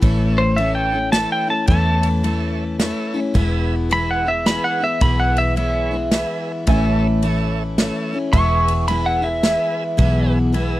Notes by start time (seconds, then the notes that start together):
0.01 A1 A2 E3 A3 C#4 E4 A4 C#5 E5, kick, ride
0.38 C5
0.56 E3 A3 C#4 E4 A4 C#5 E5, ride
0.75 G5
0.92 A3 C#4 E4
1.12 E3 A3 C#4 E4 A4 C#5 E5 A5, snare, ride
1.32 G5
1.47 A3 C#4 E4 A5
1.67 E2 A2 E3 A3 C#4 A4 C#5 E5 A5, kick, ride
1.71 E4
2.03 ride
2.23 E3 A3 C#4 E4 A4 C#5 E5, ride
2.79 E3 A3 C#4 E4 A4 C#5 E5, snare, ride
3.14 A3 C#4 E4
3.34 E1 E2 B2 E3 G#3 B3 E4 G#4 B4 E5, kick, ride
3.89 E3 G#3 B3 E4 G#4 B4 E5 B5, ride
4.11 F#5
4.25 E3 G#3 B3 E4 E5
4.46 E3 G#3 B3 E4 G#4 B4 E5 B5, snare, ride
4.64 F#5
4.80 E3 G#3 B3 E4 E5
5.00 B1 E2 B2 E3 G#3 B3 E4 G#4 B4 E5 B5, kick, ride
5.20 F#5
5.37 E5, ride
5.56 E3 G#3 B3 E4 G#4 B4 C#5 E5, ride
5.91 E3 G#3 B3 E4
6.11 E3 G#3 B3 E4 G#4 B4 E5, snare, ride
6.67 A1 A2 E3 A3 C#4 E4 A4 C#5 E5 G#5, kick, ride
6.88 A5
7.22 E3 A3 C#4 E4 A4 C#5 E5, ride
7.78 E3 A3 C#4 E4 A4 C#5 E5, snare, ride
8.13 A3 C#4 E4
8.33 E1 E2 B2 E3 G#3 B3 E4 G#4 B4 E5 A5 C#6, kick, ride
8.54 G#5
8.68 ride
8.88 E3 G#3 B3 E4 G#4 B4 E5 B5, ride
9.06 F#5
9.22 E3 G#3 B3 E4 E5
9.43 E3 G#3 B3 E4 G#4 B4 E5, snare, ride
9.97 B1 E2 B2 E3 G#3 B3 E4 G#4 B4 E5, kick, ride
10.53 E3 G#3 B3 E4 G#4 B4 E5, ride